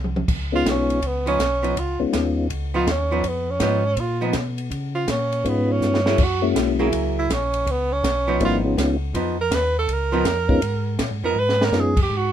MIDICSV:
0, 0, Header, 1, 6, 480
1, 0, Start_track
1, 0, Tempo, 369231
1, 370, Time_signature, 4, 2, 24, 8
1, 16021, End_track
2, 0, Start_track
2, 0, Title_t, "Tenor saxophone"
2, 0, Program_c, 0, 66
2, 721, Note_on_c, 0, 65, 86
2, 909, Note_on_c, 0, 61, 70
2, 929, Note_off_c, 0, 65, 0
2, 1390, Note_on_c, 0, 59, 71
2, 1409, Note_off_c, 0, 61, 0
2, 1657, Note_off_c, 0, 59, 0
2, 1665, Note_on_c, 0, 61, 81
2, 2324, Note_on_c, 0, 65, 72
2, 2344, Note_off_c, 0, 61, 0
2, 2617, Note_off_c, 0, 65, 0
2, 3589, Note_on_c, 0, 65, 80
2, 3785, Note_on_c, 0, 61, 73
2, 3805, Note_off_c, 0, 65, 0
2, 4267, Note_on_c, 0, 59, 70
2, 4286, Note_off_c, 0, 61, 0
2, 4557, Note_on_c, 0, 61, 82
2, 4577, Note_off_c, 0, 59, 0
2, 5197, Note_on_c, 0, 65, 76
2, 5217, Note_off_c, 0, 61, 0
2, 5493, Note_off_c, 0, 65, 0
2, 6436, Note_on_c, 0, 65, 81
2, 6633, Note_on_c, 0, 61, 70
2, 6652, Note_off_c, 0, 65, 0
2, 7133, Note_on_c, 0, 59, 72
2, 7152, Note_off_c, 0, 61, 0
2, 7430, Note_on_c, 0, 61, 78
2, 7450, Note_off_c, 0, 59, 0
2, 8112, Note_on_c, 0, 66, 80
2, 8131, Note_off_c, 0, 61, 0
2, 8390, Note_off_c, 0, 66, 0
2, 9348, Note_on_c, 0, 64, 75
2, 9533, Note_on_c, 0, 61, 84
2, 9552, Note_off_c, 0, 64, 0
2, 10024, Note_on_c, 0, 59, 77
2, 10044, Note_off_c, 0, 61, 0
2, 10307, Note_on_c, 0, 61, 84
2, 10326, Note_off_c, 0, 59, 0
2, 10944, Note_off_c, 0, 61, 0
2, 10981, Note_on_c, 0, 65, 80
2, 11152, Note_off_c, 0, 65, 0
2, 12238, Note_on_c, 0, 70, 91
2, 12412, Note_on_c, 0, 71, 90
2, 12432, Note_off_c, 0, 70, 0
2, 12701, Note_off_c, 0, 71, 0
2, 12722, Note_on_c, 0, 69, 83
2, 12909, Note_on_c, 0, 70, 89
2, 12929, Note_off_c, 0, 69, 0
2, 14321, Note_off_c, 0, 70, 0
2, 14631, Note_on_c, 0, 70, 93
2, 14813, Note_on_c, 0, 71, 98
2, 14833, Note_off_c, 0, 70, 0
2, 15142, Note_on_c, 0, 70, 90
2, 15161, Note_off_c, 0, 71, 0
2, 15345, Note_on_c, 0, 68, 84
2, 15364, Note_off_c, 0, 70, 0
2, 15609, Note_off_c, 0, 68, 0
2, 15634, Note_on_c, 0, 67, 82
2, 15828, Note_on_c, 0, 66, 83
2, 15848, Note_off_c, 0, 67, 0
2, 16021, Note_off_c, 0, 66, 0
2, 16021, End_track
3, 0, Start_track
3, 0, Title_t, "Tonewheel organ"
3, 0, Program_c, 1, 16
3, 679, Note_on_c, 1, 56, 64
3, 679, Note_on_c, 1, 59, 53
3, 681, Note_on_c, 1, 61, 57
3, 688, Note_on_c, 1, 63, 59
3, 692, Note_on_c, 1, 65, 65
3, 1296, Note_off_c, 1, 56, 0
3, 1296, Note_off_c, 1, 59, 0
3, 1297, Note_off_c, 1, 61, 0
3, 1301, Note_off_c, 1, 63, 0
3, 1303, Note_off_c, 1, 65, 0
3, 2595, Note_on_c, 1, 59, 58
3, 2595, Note_on_c, 1, 61, 61
3, 2600, Note_on_c, 1, 56, 59
3, 2604, Note_on_c, 1, 63, 54
3, 2605, Note_on_c, 1, 65, 65
3, 3214, Note_off_c, 1, 59, 0
3, 3214, Note_off_c, 1, 61, 0
3, 3216, Note_off_c, 1, 56, 0
3, 3218, Note_off_c, 1, 63, 0
3, 3219, Note_off_c, 1, 65, 0
3, 7077, Note_on_c, 1, 56, 62
3, 7080, Note_on_c, 1, 59, 54
3, 7085, Note_on_c, 1, 65, 64
3, 7088, Note_on_c, 1, 61, 54
3, 7092, Note_on_c, 1, 63, 55
3, 7811, Note_off_c, 1, 56, 0
3, 7812, Note_off_c, 1, 59, 0
3, 7815, Note_off_c, 1, 65, 0
3, 7816, Note_off_c, 1, 61, 0
3, 7818, Note_off_c, 1, 63, 0
3, 8345, Note_on_c, 1, 58, 51
3, 8346, Note_on_c, 1, 56, 61
3, 8348, Note_on_c, 1, 61, 52
3, 8348, Note_on_c, 1, 64, 51
3, 8349, Note_on_c, 1, 66, 65
3, 8968, Note_off_c, 1, 58, 0
3, 8969, Note_off_c, 1, 56, 0
3, 8970, Note_off_c, 1, 61, 0
3, 8970, Note_off_c, 1, 64, 0
3, 8970, Note_off_c, 1, 66, 0
3, 10926, Note_on_c, 1, 58, 63
3, 10927, Note_on_c, 1, 55, 73
3, 10929, Note_on_c, 1, 60, 66
3, 10932, Note_on_c, 1, 64, 78
3, 10934, Note_on_c, 1, 62, 66
3, 11207, Note_off_c, 1, 58, 0
3, 11208, Note_off_c, 1, 55, 0
3, 11208, Note_off_c, 1, 60, 0
3, 11210, Note_off_c, 1, 64, 0
3, 11211, Note_off_c, 1, 62, 0
3, 11232, Note_on_c, 1, 56, 66
3, 11233, Note_on_c, 1, 59, 63
3, 11238, Note_on_c, 1, 61, 56
3, 11239, Note_on_c, 1, 63, 62
3, 11247, Note_on_c, 1, 65, 66
3, 11654, Note_off_c, 1, 56, 0
3, 11655, Note_off_c, 1, 59, 0
3, 11657, Note_off_c, 1, 61, 0
3, 11658, Note_off_c, 1, 63, 0
3, 11662, Note_off_c, 1, 65, 0
3, 13630, Note_on_c, 1, 59, 70
3, 13633, Note_on_c, 1, 61, 65
3, 13636, Note_on_c, 1, 56, 76
3, 13637, Note_on_c, 1, 63, 70
3, 13645, Note_on_c, 1, 65, 83
3, 13789, Note_off_c, 1, 59, 0
3, 13791, Note_off_c, 1, 61, 0
3, 13792, Note_off_c, 1, 56, 0
3, 13793, Note_off_c, 1, 63, 0
3, 13797, Note_off_c, 1, 65, 0
3, 15244, Note_on_c, 1, 56, 52
3, 15244, Note_on_c, 1, 59, 54
3, 15248, Note_on_c, 1, 63, 53
3, 15254, Note_on_c, 1, 61, 52
3, 15259, Note_on_c, 1, 65, 59
3, 15527, Note_off_c, 1, 59, 0
3, 15528, Note_off_c, 1, 56, 0
3, 15530, Note_off_c, 1, 63, 0
3, 15533, Note_off_c, 1, 61, 0
3, 15535, Note_off_c, 1, 65, 0
3, 16021, End_track
4, 0, Start_track
4, 0, Title_t, "Hollow-body jazz guitar"
4, 0, Program_c, 2, 26
4, 1640, Note_on_c, 2, 53, 53
4, 1651, Note_on_c, 2, 59, 61
4, 1663, Note_on_c, 2, 63, 66
4, 1793, Note_off_c, 2, 53, 0
4, 1799, Note_off_c, 2, 59, 0
4, 1805, Note_off_c, 2, 63, 0
4, 2112, Note_on_c, 2, 53, 45
4, 2118, Note_on_c, 2, 59, 56
4, 2126, Note_on_c, 2, 63, 59
4, 2269, Note_off_c, 2, 53, 0
4, 2273, Note_off_c, 2, 59, 0
4, 2276, Note_off_c, 2, 63, 0
4, 3565, Note_on_c, 2, 53, 68
4, 3567, Note_on_c, 2, 59, 63
4, 3577, Note_on_c, 2, 63, 70
4, 3716, Note_off_c, 2, 53, 0
4, 3716, Note_off_c, 2, 59, 0
4, 3722, Note_off_c, 2, 63, 0
4, 4045, Note_on_c, 2, 53, 50
4, 4057, Note_on_c, 2, 59, 66
4, 4060, Note_on_c, 2, 63, 63
4, 4196, Note_off_c, 2, 53, 0
4, 4201, Note_off_c, 2, 59, 0
4, 4203, Note_off_c, 2, 63, 0
4, 4689, Note_on_c, 2, 53, 54
4, 4704, Note_on_c, 2, 59, 64
4, 4710, Note_on_c, 2, 63, 67
4, 4968, Note_off_c, 2, 53, 0
4, 4976, Note_off_c, 2, 59, 0
4, 4979, Note_off_c, 2, 63, 0
4, 5474, Note_on_c, 2, 53, 70
4, 5485, Note_on_c, 2, 59, 76
4, 5485, Note_on_c, 2, 63, 75
4, 5630, Note_off_c, 2, 53, 0
4, 5635, Note_off_c, 2, 59, 0
4, 5635, Note_off_c, 2, 63, 0
4, 7883, Note_on_c, 2, 54, 57
4, 7887, Note_on_c, 2, 58, 61
4, 7890, Note_on_c, 2, 64, 66
4, 7902, Note_on_c, 2, 68, 60
4, 8034, Note_off_c, 2, 54, 0
4, 8036, Note_off_c, 2, 58, 0
4, 8038, Note_off_c, 2, 64, 0
4, 8043, Note_off_c, 2, 68, 0
4, 8831, Note_on_c, 2, 54, 62
4, 8832, Note_on_c, 2, 58, 61
4, 8845, Note_on_c, 2, 64, 64
4, 8845, Note_on_c, 2, 68, 70
4, 9451, Note_off_c, 2, 54, 0
4, 9452, Note_off_c, 2, 58, 0
4, 9458, Note_off_c, 2, 64, 0
4, 9458, Note_off_c, 2, 68, 0
4, 10755, Note_on_c, 2, 53, 58
4, 10763, Note_on_c, 2, 59, 71
4, 10774, Note_on_c, 2, 63, 64
4, 11374, Note_off_c, 2, 53, 0
4, 11378, Note_off_c, 2, 59, 0
4, 11383, Note_off_c, 2, 63, 0
4, 11889, Note_on_c, 2, 53, 62
4, 11900, Note_on_c, 2, 59, 63
4, 11907, Note_on_c, 2, 63, 70
4, 12169, Note_off_c, 2, 53, 0
4, 12174, Note_off_c, 2, 59, 0
4, 12178, Note_off_c, 2, 63, 0
4, 13158, Note_on_c, 2, 53, 75
4, 13171, Note_on_c, 2, 59, 77
4, 13179, Note_on_c, 2, 63, 78
4, 13313, Note_off_c, 2, 53, 0
4, 13320, Note_off_c, 2, 59, 0
4, 13323, Note_off_c, 2, 63, 0
4, 14608, Note_on_c, 2, 53, 49
4, 14615, Note_on_c, 2, 59, 58
4, 14625, Note_on_c, 2, 63, 58
4, 14759, Note_off_c, 2, 53, 0
4, 14762, Note_off_c, 2, 59, 0
4, 14767, Note_off_c, 2, 63, 0
4, 16021, End_track
5, 0, Start_track
5, 0, Title_t, "Tonewheel organ"
5, 0, Program_c, 3, 16
5, 0, Note_on_c, 3, 36, 84
5, 321, Note_off_c, 3, 36, 0
5, 363, Note_on_c, 3, 37, 72
5, 832, Note_off_c, 3, 37, 0
5, 848, Note_on_c, 3, 35, 83
5, 1315, Note_off_c, 3, 35, 0
5, 1328, Note_on_c, 3, 37, 77
5, 1795, Note_off_c, 3, 37, 0
5, 1806, Note_on_c, 3, 35, 81
5, 2274, Note_off_c, 3, 35, 0
5, 2288, Note_on_c, 3, 37, 78
5, 2577, Note_off_c, 3, 37, 0
5, 2593, Note_on_c, 3, 37, 34
5, 2680, Note_off_c, 3, 37, 0
5, 2768, Note_on_c, 3, 39, 84
5, 3235, Note_off_c, 3, 39, 0
5, 3247, Note_on_c, 3, 37, 82
5, 3714, Note_off_c, 3, 37, 0
5, 3728, Note_on_c, 3, 39, 90
5, 4194, Note_off_c, 3, 39, 0
5, 4206, Note_on_c, 3, 41, 78
5, 4673, Note_off_c, 3, 41, 0
5, 4679, Note_on_c, 3, 44, 92
5, 5150, Note_off_c, 3, 44, 0
5, 5154, Note_on_c, 3, 46, 87
5, 5627, Note_off_c, 3, 46, 0
5, 5640, Note_on_c, 3, 47, 84
5, 6110, Note_off_c, 3, 47, 0
5, 6115, Note_on_c, 3, 49, 77
5, 6588, Note_off_c, 3, 49, 0
5, 6599, Note_on_c, 3, 46, 83
5, 7070, Note_off_c, 3, 46, 0
5, 7085, Note_on_c, 3, 44, 83
5, 7548, Note_on_c, 3, 43, 81
5, 7552, Note_off_c, 3, 44, 0
5, 8024, Note_off_c, 3, 43, 0
5, 8039, Note_on_c, 3, 42, 74
5, 8509, Note_off_c, 3, 42, 0
5, 8516, Note_on_c, 3, 35, 85
5, 8988, Note_off_c, 3, 35, 0
5, 9000, Note_on_c, 3, 37, 85
5, 9470, Note_off_c, 3, 37, 0
5, 9489, Note_on_c, 3, 34, 86
5, 9955, Note_off_c, 3, 34, 0
5, 9964, Note_on_c, 3, 37, 75
5, 10432, Note_off_c, 3, 37, 0
5, 10443, Note_on_c, 3, 35, 85
5, 10912, Note_off_c, 3, 35, 0
5, 10918, Note_on_c, 3, 32, 94
5, 11390, Note_off_c, 3, 32, 0
5, 11408, Note_on_c, 3, 37, 93
5, 11875, Note_off_c, 3, 37, 0
5, 11887, Note_on_c, 3, 41, 79
5, 12355, Note_off_c, 3, 41, 0
5, 12366, Note_on_c, 3, 39, 94
5, 12834, Note_off_c, 3, 39, 0
5, 12846, Note_on_c, 3, 37, 89
5, 13315, Note_off_c, 3, 37, 0
5, 13324, Note_on_c, 3, 41, 85
5, 13794, Note_off_c, 3, 41, 0
5, 13801, Note_on_c, 3, 44, 79
5, 14272, Note_off_c, 3, 44, 0
5, 14290, Note_on_c, 3, 46, 85
5, 14439, Note_on_c, 3, 44, 54
5, 14447, Note_off_c, 3, 46, 0
5, 14603, Note_on_c, 3, 41, 59
5, 14606, Note_off_c, 3, 44, 0
5, 14756, Note_on_c, 3, 44, 85
5, 14757, Note_off_c, 3, 41, 0
5, 15230, Note_off_c, 3, 44, 0
5, 15233, Note_on_c, 3, 42, 82
5, 15708, Note_off_c, 3, 42, 0
5, 15723, Note_on_c, 3, 44, 72
5, 16021, Note_off_c, 3, 44, 0
5, 16021, End_track
6, 0, Start_track
6, 0, Title_t, "Drums"
6, 56, Note_on_c, 9, 47, 50
6, 186, Note_off_c, 9, 47, 0
6, 212, Note_on_c, 9, 47, 67
6, 342, Note_off_c, 9, 47, 0
6, 367, Note_on_c, 9, 36, 66
6, 368, Note_on_c, 9, 49, 69
6, 497, Note_off_c, 9, 36, 0
6, 498, Note_off_c, 9, 49, 0
6, 851, Note_on_c, 9, 36, 22
6, 861, Note_on_c, 9, 38, 67
6, 862, Note_on_c, 9, 44, 65
6, 862, Note_on_c, 9, 51, 65
6, 981, Note_off_c, 9, 36, 0
6, 991, Note_off_c, 9, 38, 0
6, 992, Note_off_c, 9, 44, 0
6, 992, Note_off_c, 9, 51, 0
6, 1170, Note_on_c, 9, 51, 44
6, 1300, Note_off_c, 9, 51, 0
6, 1331, Note_on_c, 9, 36, 18
6, 1332, Note_on_c, 9, 51, 61
6, 1461, Note_off_c, 9, 36, 0
6, 1462, Note_off_c, 9, 51, 0
6, 1651, Note_on_c, 9, 51, 40
6, 1781, Note_off_c, 9, 51, 0
6, 1810, Note_on_c, 9, 36, 21
6, 1816, Note_on_c, 9, 38, 61
6, 1818, Note_on_c, 9, 44, 49
6, 1818, Note_on_c, 9, 51, 60
6, 1940, Note_off_c, 9, 36, 0
6, 1946, Note_off_c, 9, 38, 0
6, 1948, Note_off_c, 9, 44, 0
6, 1948, Note_off_c, 9, 51, 0
6, 2135, Note_on_c, 9, 51, 43
6, 2265, Note_off_c, 9, 51, 0
6, 2294, Note_on_c, 9, 36, 22
6, 2300, Note_on_c, 9, 51, 64
6, 2424, Note_off_c, 9, 36, 0
6, 2430, Note_off_c, 9, 51, 0
6, 2772, Note_on_c, 9, 38, 65
6, 2773, Note_on_c, 9, 36, 17
6, 2773, Note_on_c, 9, 44, 65
6, 2773, Note_on_c, 9, 51, 59
6, 2902, Note_off_c, 9, 38, 0
6, 2903, Note_off_c, 9, 36, 0
6, 2903, Note_off_c, 9, 44, 0
6, 2903, Note_off_c, 9, 51, 0
6, 3252, Note_on_c, 9, 36, 23
6, 3253, Note_on_c, 9, 51, 59
6, 3382, Note_off_c, 9, 36, 0
6, 3383, Note_off_c, 9, 51, 0
6, 3733, Note_on_c, 9, 36, 18
6, 3735, Note_on_c, 9, 38, 62
6, 3736, Note_on_c, 9, 44, 45
6, 3736, Note_on_c, 9, 51, 62
6, 3863, Note_off_c, 9, 36, 0
6, 3865, Note_off_c, 9, 38, 0
6, 3866, Note_off_c, 9, 44, 0
6, 3866, Note_off_c, 9, 51, 0
6, 4208, Note_on_c, 9, 36, 21
6, 4210, Note_on_c, 9, 51, 58
6, 4338, Note_off_c, 9, 36, 0
6, 4340, Note_off_c, 9, 51, 0
6, 4678, Note_on_c, 9, 38, 68
6, 4679, Note_on_c, 9, 44, 57
6, 4679, Note_on_c, 9, 51, 65
6, 4684, Note_on_c, 9, 36, 25
6, 4808, Note_off_c, 9, 38, 0
6, 4809, Note_off_c, 9, 44, 0
6, 4809, Note_off_c, 9, 51, 0
6, 4814, Note_off_c, 9, 36, 0
6, 5158, Note_on_c, 9, 51, 54
6, 5160, Note_on_c, 9, 36, 23
6, 5288, Note_off_c, 9, 51, 0
6, 5290, Note_off_c, 9, 36, 0
6, 5631, Note_on_c, 9, 38, 60
6, 5632, Note_on_c, 9, 44, 55
6, 5632, Note_on_c, 9, 51, 60
6, 5639, Note_on_c, 9, 36, 22
6, 5761, Note_off_c, 9, 38, 0
6, 5762, Note_off_c, 9, 44, 0
6, 5762, Note_off_c, 9, 51, 0
6, 5769, Note_off_c, 9, 36, 0
6, 5953, Note_on_c, 9, 51, 44
6, 6083, Note_off_c, 9, 51, 0
6, 6121, Note_on_c, 9, 36, 22
6, 6128, Note_on_c, 9, 51, 59
6, 6251, Note_off_c, 9, 36, 0
6, 6258, Note_off_c, 9, 51, 0
6, 6600, Note_on_c, 9, 36, 20
6, 6601, Note_on_c, 9, 38, 65
6, 6602, Note_on_c, 9, 44, 51
6, 6602, Note_on_c, 9, 51, 65
6, 6730, Note_off_c, 9, 36, 0
6, 6731, Note_off_c, 9, 38, 0
6, 6732, Note_off_c, 9, 44, 0
6, 6732, Note_off_c, 9, 51, 0
6, 6920, Note_on_c, 9, 51, 43
6, 7050, Note_off_c, 9, 51, 0
6, 7083, Note_on_c, 9, 36, 23
6, 7091, Note_on_c, 9, 51, 56
6, 7213, Note_off_c, 9, 36, 0
6, 7221, Note_off_c, 9, 51, 0
6, 7565, Note_on_c, 9, 38, 40
6, 7567, Note_on_c, 9, 44, 54
6, 7695, Note_off_c, 9, 38, 0
6, 7697, Note_off_c, 9, 44, 0
6, 7722, Note_on_c, 9, 38, 55
6, 7852, Note_off_c, 9, 38, 0
6, 7877, Note_on_c, 9, 38, 72
6, 8007, Note_off_c, 9, 38, 0
6, 8034, Note_on_c, 9, 49, 73
6, 8041, Note_on_c, 9, 36, 74
6, 8164, Note_off_c, 9, 49, 0
6, 8171, Note_off_c, 9, 36, 0
6, 8522, Note_on_c, 9, 36, 18
6, 8527, Note_on_c, 9, 38, 67
6, 8528, Note_on_c, 9, 44, 53
6, 8528, Note_on_c, 9, 51, 70
6, 8652, Note_off_c, 9, 36, 0
6, 8657, Note_off_c, 9, 38, 0
6, 8658, Note_off_c, 9, 44, 0
6, 8658, Note_off_c, 9, 51, 0
6, 9003, Note_on_c, 9, 36, 24
6, 9004, Note_on_c, 9, 51, 65
6, 9133, Note_off_c, 9, 36, 0
6, 9134, Note_off_c, 9, 51, 0
6, 9487, Note_on_c, 9, 36, 21
6, 9494, Note_on_c, 9, 38, 59
6, 9495, Note_on_c, 9, 44, 57
6, 9495, Note_on_c, 9, 51, 64
6, 9617, Note_off_c, 9, 36, 0
6, 9624, Note_off_c, 9, 38, 0
6, 9625, Note_off_c, 9, 44, 0
6, 9625, Note_off_c, 9, 51, 0
6, 9796, Note_on_c, 9, 51, 46
6, 9926, Note_off_c, 9, 51, 0
6, 9968, Note_on_c, 9, 36, 25
6, 9974, Note_on_c, 9, 51, 55
6, 10098, Note_off_c, 9, 36, 0
6, 10104, Note_off_c, 9, 51, 0
6, 10448, Note_on_c, 9, 36, 23
6, 10454, Note_on_c, 9, 38, 66
6, 10455, Note_on_c, 9, 44, 60
6, 10455, Note_on_c, 9, 51, 66
6, 10578, Note_off_c, 9, 36, 0
6, 10584, Note_off_c, 9, 38, 0
6, 10585, Note_off_c, 9, 44, 0
6, 10585, Note_off_c, 9, 51, 0
6, 10926, Note_on_c, 9, 36, 21
6, 10926, Note_on_c, 9, 51, 56
6, 11056, Note_off_c, 9, 36, 0
6, 11056, Note_off_c, 9, 51, 0
6, 11408, Note_on_c, 9, 36, 20
6, 11417, Note_on_c, 9, 38, 64
6, 11418, Note_on_c, 9, 44, 60
6, 11418, Note_on_c, 9, 51, 64
6, 11538, Note_off_c, 9, 36, 0
6, 11547, Note_off_c, 9, 38, 0
6, 11548, Note_off_c, 9, 44, 0
6, 11548, Note_off_c, 9, 51, 0
6, 11888, Note_on_c, 9, 36, 28
6, 11891, Note_on_c, 9, 51, 62
6, 12018, Note_off_c, 9, 36, 0
6, 12021, Note_off_c, 9, 51, 0
6, 12367, Note_on_c, 9, 36, 18
6, 12369, Note_on_c, 9, 38, 66
6, 12370, Note_on_c, 9, 44, 52
6, 12370, Note_on_c, 9, 51, 70
6, 12497, Note_off_c, 9, 36, 0
6, 12499, Note_off_c, 9, 38, 0
6, 12500, Note_off_c, 9, 44, 0
6, 12500, Note_off_c, 9, 51, 0
6, 12846, Note_on_c, 9, 36, 23
6, 12852, Note_on_c, 9, 51, 55
6, 12976, Note_off_c, 9, 36, 0
6, 12982, Note_off_c, 9, 51, 0
6, 13325, Note_on_c, 9, 38, 64
6, 13326, Note_on_c, 9, 44, 58
6, 13326, Note_on_c, 9, 51, 63
6, 13327, Note_on_c, 9, 36, 21
6, 13455, Note_off_c, 9, 38, 0
6, 13456, Note_off_c, 9, 44, 0
6, 13456, Note_off_c, 9, 51, 0
6, 13457, Note_off_c, 9, 36, 0
6, 13638, Note_on_c, 9, 36, 66
6, 13768, Note_off_c, 9, 36, 0
6, 13805, Note_on_c, 9, 51, 59
6, 13807, Note_on_c, 9, 36, 19
6, 13935, Note_off_c, 9, 51, 0
6, 13937, Note_off_c, 9, 36, 0
6, 14285, Note_on_c, 9, 38, 70
6, 14286, Note_on_c, 9, 44, 57
6, 14286, Note_on_c, 9, 51, 62
6, 14289, Note_on_c, 9, 36, 24
6, 14415, Note_off_c, 9, 38, 0
6, 14416, Note_off_c, 9, 44, 0
6, 14416, Note_off_c, 9, 51, 0
6, 14419, Note_off_c, 9, 36, 0
6, 14938, Note_on_c, 9, 38, 59
6, 15068, Note_off_c, 9, 38, 0
6, 15098, Note_on_c, 9, 38, 77
6, 15228, Note_off_c, 9, 38, 0
6, 15244, Note_on_c, 9, 38, 54
6, 15245, Note_on_c, 9, 44, 47
6, 15374, Note_off_c, 9, 38, 0
6, 15375, Note_off_c, 9, 44, 0
6, 15558, Note_on_c, 9, 36, 74
6, 15559, Note_on_c, 9, 49, 67
6, 15688, Note_off_c, 9, 36, 0
6, 15689, Note_off_c, 9, 49, 0
6, 15727, Note_on_c, 9, 36, 20
6, 15857, Note_off_c, 9, 36, 0
6, 16021, End_track
0, 0, End_of_file